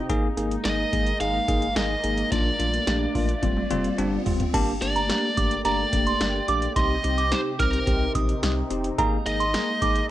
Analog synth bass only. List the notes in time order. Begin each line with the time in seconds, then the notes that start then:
0.10 G#1
0.37 G#1
0.65 G#1
0.93 G#1
1.21 G#1
1.48 G1
1.76 G#1
2.04 G#1
2.32 A#1
2.59 A#1
2.87 A#1
3.15 A#1
3.43 F1
3.71 F1
3.98 G1
4.26 F1
4.54 G1
4.82 G1
5.37 G1
5.65 G1
5.93 F1
6.21 G1
6.48 A#1
6.76 C2
7.04 C2
7.60 C2
7.87 C2
8.15 A#1
8.43 C2
8.71 F1
8.98 G#1
9.26 G#1
9.82 G#1